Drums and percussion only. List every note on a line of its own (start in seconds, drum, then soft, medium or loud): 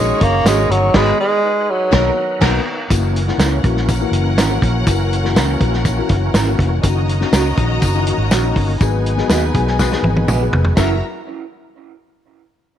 0.21 kick loud
0.21 closed hi-hat medium
0.46 snare loud
0.46 closed hi-hat loud
0.46 tambourine loud
0.71 closed hi-hat medium
0.94 kick loud
0.94 snare loud
0.94 crash medium
1.93 kick loud
1.93 snare loud
2.41 kick loud
2.41 snare loud
2.41 crash medium
2.90 kick loud
2.90 closed hi-hat loud
2.90 tambourine medium
3.16 closed hi-hat medium
3.28 snare soft
3.39 snare loud
3.39 closed hi-hat medium
3.39 tambourine medium
3.64 kick loud
3.64 closed hi-hat medium
3.77 snare soft
3.89 kick medium
3.89 closed hi-hat medium
3.89 tambourine medium
4.13 closed hi-hat medium
4.38 snare loud
4.38 closed hi-hat loud
4.38 tambourine medium
4.62 kick loud
4.62 closed hi-hat medium
4.87 kick loud
4.87 closed hi-hat loud
4.87 tambourine medium
5.13 closed hi-hat medium
5.25 snare soft
5.36 snare loud
5.36 closed hi-hat medium
5.36 tambourine medium
5.61 kick loud
5.61 closed hi-hat medium
5.73 snare soft
5.85 kick loud
5.85 closed hi-hat medium
5.85 tambourine medium
6.09 kick loud
6.09 closed hi-hat medium
6.34 snare loud
6.34 closed hi-hat loud
6.34 tambourine medium
6.59 kick medium
6.59 closed hi-hat medium
6.83 kick loud
6.83 closed hi-hat loud
6.83 tambourine medium
7.09 closed hi-hat medium
7.21 snare soft
7.32 snare loud
7.32 closed hi-hat medium
7.32 tambourine loud
7.57 kick loud
7.57 closed hi-hat medium
7.82 kick medium
7.82 closed hi-hat medium
7.82 tambourine medium
8.07 closed hi-hat medium
8.31 snare loud
8.31 closed hi-hat loud
8.31 tambourine medium
8.56 kick loud
8.56 open hi-hat medium
8.81 kick loud
8.81 closed hi-hat loud
8.81 tambourine medium
9.06 closed hi-hat medium
9.18 snare soft
9.29 snare loud
9.29 closed hi-hat medium
9.29 tambourine medium
9.54 kick loud
9.54 closed hi-hat medium
9.67 snare soft
9.79 kick medium
9.79 snare medium
9.79 tambourine medium
9.92 snare medium
10.04 high tom medium
10.17 high tom medium
10.28 mid tom medium
10.28 tambourine medium
10.53 floor tom loud
10.65 floor tom medium
10.77 kick medium
10.77 snare loud
10.77 ride bell medium
10.77 tambourine medium